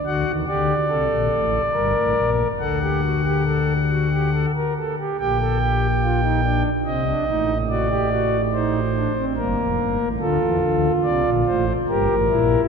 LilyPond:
<<
  \new Staff \with { instrumentName = "Pipe organ" } { \time 3/4 \key g \minor \tempo 4 = 72 << { fis''8 d''2~ d''8 | fis''2~ fis''8 r8 | g''2 ees''4 | d''4 c''4 bes'4 |
a'4 d''8 c''8 bes'4 | } \\ { fis'8 g'8 a'4 bes'4 | a'16 g'16 fis'16 g'16 a'8 fis'16 g'16 a'16 bes'16 a'16 g'16 | g'16 a'16 g'8 f'16 ees'16 d'8 c'16 d'16 ees'8 | fis'16 g'16 fis'8 ees'8 d'16 c'16 bes4 |
f'2 g'8 e'8 | } >> }
  \new Staff \with { instrumentName = "Pipe organ" } { \clef bass \time 3/4 \key g \minor <d, d>16 <ees, ees>16 <d, d>8 <c, c>16 <bes,, bes,>16 <a,, a,>8 <g,, g,>16 <a,, a,>16 <bes,, bes,>8 | <d, d>2~ <d, d>8 r8 | <bes,, bes,>2 <c, c>8 <a,, a,>8~ | <a,, a,>2 <g,, g,>16 <f,, f,>16 <g,, g,>16 <a,, a,>16 |
<d, d>16 <e, e>16 <d, d>8 <c, c>16 <bes,, bes,>16 <a,, a,>8 <g,, g,>16 <a,, a,>16 <bes,, bes,>8 | }
>>